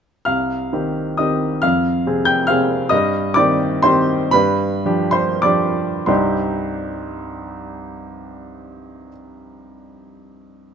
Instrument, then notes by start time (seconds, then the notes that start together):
grand piano
0.25 C2 F5 F6
0.73 D#3 C4 G4
1.17 D#3 C4 G4 D#5 D#6
1.62 F2 F5 F6
2.06 C3 C4 G#4
2.25 G5 G6
2.47 C3 C4 G#4 F5 F6
2.89 G2 D#5 D#6
3.34 D#3 C4 G4 D5 D6
3.83 D#3 C4 G4 C5 C6
4.31 G2 B4 B5
4.85 F3 D4 G4
5.11 C5 C6
5.42 F3 D4 G4 D5 D6
6.06 C2 G2 G3 C4 D#4 G4 C6